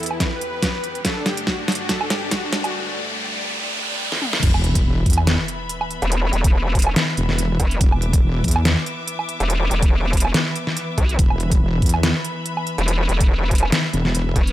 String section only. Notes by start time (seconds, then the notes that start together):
Already playing: E2 E3 B3 G4 B4
1.05 G2 D3 A3 D5
4.43 E3 B3 B4 E5 B5
7.81 D6
11.19 B5